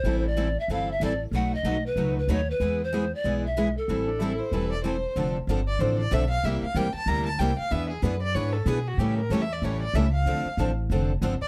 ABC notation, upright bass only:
X:1
M:4/4
L:1/8
Q:"Swing" 1/4=188
K:Am
V:1 name="Upright bass" clef=bass
A,,,4 G,,,2 A,,,2 | B,,,2 B,,,2 ^C,,2 ^D,,2 | E,,4 B,,,4 | A,,,4 E,,,4 |
[K:Dm] F,,,2 G,,,2 A,,,2 =B,,,2 | C,, z E,, z D,,2 C,, z | E,,2 ^F,,2 ^G,,2 =B,,2 | A,,2 E,,2 A,,,2 ^C,,2 |
D,, z A,,,2 F,,,2 G,,, z |]